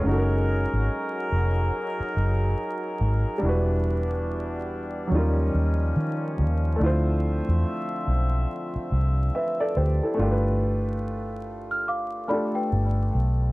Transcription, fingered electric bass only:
0.05 F#1
0.73 G#1
1.32 F1
2.00 muted fingered electric bass stroke
2.16 F#1
3.01 G#1
3.43 E1
5.12 D#2
5.54 D#2
5.96 D#3
6.39 D#2
6.81 D2
7.49 E2
8.07 B1
8.76 muted fingered electric bass stroke
8.92 C2
9.77 D2
10.19 G1
12.73 G1
13.15 B1

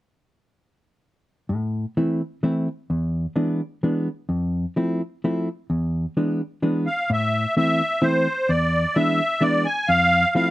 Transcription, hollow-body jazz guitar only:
1.49 A2
1.97 E3 A3 C4 E4
2.43 E3 A3 C4 E4
2.90 E2
3.36 E3 G#3 B3 D4
3.83 E3 G#3 B3 D4
4.29 F2
4.76 F3 A3 C4 E4
5.24 F3 A3 C4 E4
5.70 E2
6.17 E3 G#3 B3 D4
6.62 E3 G#3 B3 D4
7.10 A2
7.57 E3 A3 C4 E4
8.02 E3 A3 C4 E4
8.49 E2
8.96 E3 G#3 B3 D4
9.41 E3 G#3 B3 D4
9.89 F2
10.35 F3 A3 C4 E4

